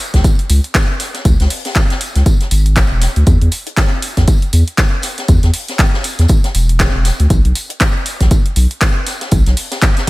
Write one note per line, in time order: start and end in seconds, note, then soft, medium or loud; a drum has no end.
0.14 0.21 C#2 medium
0.14 kick medium
0.14 snare soft
0.14 closed hi-hat soft
0.24 kick loud
0.24 closed hi-hat medium
0.24 tambourine medium
0.39 closed hi-hat soft
0.50 0.60 C#2 medium
0.50 open hi-hat loud
0.50 tambourine medium
0.64 closed hi-hat soft
0.75 kick loud
0.75 snare loud
0.75 clap loud
0.75 closed hi-hat medium
0.75 tambourine medium
1.00 snare soft
1.00 open hi-hat medium
1.00 tambourine medium
1.14 snare medium
1.14 closed hi-hat medium
1.25 1.35 C#2 loud
1.25 kick loud
1.25 closed hi-hat medium
1.25 tambourine medium
1.40 1.47 C#2 loud
1.40 snare soft
1.40 closed hi-hat soft
1.50 open hi-hat medium
1.50 open hi-hat loud
1.65 snare medium
1.65 closed hi-hat medium
1.75 kick loud
1.75 snare loud
1.75 clap loud
1.75 closed hi-hat medium
1.75 tambourine medium
1.90 snare soft
1.90 closed hi-hat soft
2.01 open hi-hat medium
2.01 tambourine medium
2.15 2.23 C#2 medium
2.15 snare soft
2.15 closed hi-hat soft
2.26 kick loud
2.26 closed hi-hat medium
2.26 tambourine medium
2.41 snare soft
2.41 closed hi-hat soft
2.51 2.84 G#1 medium
2.51 open hi-hat loud
2.51 tambourine medium
2.66 closed hi-hat soft
2.76 kick loud
2.76 snare loud
2.76 clap loud
2.76 closed hi-hat medium
2.76 tambourine medium
2.91 3.08 E1 medium
3.01 snare soft
3.01 open hi-hat medium
3.01 tambourine medium
3.16 3.24 D2 loud
3.16 closed hi-hat soft
3.27 3.37 E2 loud
3.27 kick loud
3.27 closed hi-hat medium
3.27 tambourine medium
3.41 3.49 E2 loud
3.41 closed hi-hat soft
3.52 open hi-hat loud
3.52 tambourine medium
3.67 closed hi-hat soft
3.77 kick loud
3.77 snare loud
3.77 clap loud
3.77 closed hi-hat medium
3.77 tambourine medium
4.02 open hi-hat medium
4.02 tambourine medium
4.17 4.25 E2 medium
4.17 kick medium
4.17 snare medium
4.17 closed hi-hat soft
4.28 kick loud
4.28 closed hi-hat medium
4.28 tambourine medium
4.42 closed hi-hat soft
4.53 4.63 E2 medium
4.53 open hi-hat loud
4.53 tambourine medium
4.68 closed hi-hat soft
4.78 kick loud
4.78 snare loud
4.78 clap loud
4.78 closed hi-hat medium
4.78 tambourine medium
5.02 snare soft
5.02 open hi-hat medium
5.02 tambourine medium
5.18 snare medium
5.18 closed hi-hat medium
5.28 5.39 E2 loud
5.28 kick loud
5.28 closed hi-hat medium
5.28 tambourine medium
5.43 5.51 E2 loud
5.43 snare soft
5.43 closed hi-hat soft
5.54 open hi-hat loud
5.54 open hi-hat medium
5.68 snare medium
5.68 closed hi-hat medium
5.79 kick loud
5.79 snare loud
5.79 clap loud
5.79 closed hi-hat medium
5.79 tambourine medium
5.94 snare soft
6.04 open hi-hat medium
6.04 tambourine medium
6.19 6.26 E2 medium
6.19 snare soft
6.19 closed hi-hat medium
6.28 kick loud
6.28 closed hi-hat medium
6.28 tambourine medium
6.44 snare soft
6.44 closed hi-hat soft
6.55 6.87 E1 medium
6.55 open hi-hat loud
6.55 tambourine medium
6.69 closed hi-hat medium
6.80 kick loud
6.80 snare loud
6.80 clap loud
6.80 closed hi-hat medium
6.80 tambourine medium
6.95 7.11 E1 medium
7.05 snare medium
7.05 open hi-hat medium
7.05 tambourine medium
7.20 7.27 D2 loud
7.20 closed hi-hat soft
7.30 7.41 B1 loud
7.30 kick loud
7.30 closed hi-hat medium
7.30 tambourine medium
7.45 7.52 B1 loud
7.45 closed hi-hat soft
7.55 open hi-hat loud
7.55 tambourine medium
7.70 closed hi-hat soft
7.70 closed hi-hat medium
7.80 kick loud
7.80 snare loud
7.80 clap loud
7.80 closed hi-hat medium
7.80 tambourine medium
8.06 open hi-hat medium
8.06 tambourine medium
8.21 8.28 B1 medium
8.21 kick medium
8.21 snare soft
8.21 closed hi-hat medium
8.31 kick loud
8.31 closed hi-hat medium
8.31 tambourine medium
8.46 closed hi-hat soft
8.56 8.67 B1 medium
8.56 open hi-hat loud
8.56 tambourine medium
8.71 closed hi-hat medium
8.81 kick loud
8.81 snare loud
8.81 clap loud
8.81 closed hi-hat medium
8.81 tambourine medium
9.07 snare soft
9.07 open hi-hat medium
9.07 tambourine medium
9.21 snare medium
9.21 closed hi-hat medium
9.31 9.42 B1 loud
9.31 kick loud
9.31 closed hi-hat medium
9.31 tambourine medium
9.46 9.54 B1 loud
9.46 snare soft
9.46 closed hi-hat soft
9.57 open hi-hat medium
9.57 open hi-hat loud
9.71 snare medium
9.71 closed hi-hat medium
9.82 kick loud
9.82 snare loud
9.82 clap loud
9.82 closed hi-hat medium
9.82 tambourine medium
9.97 snare medium
9.97 closed hi-hat soft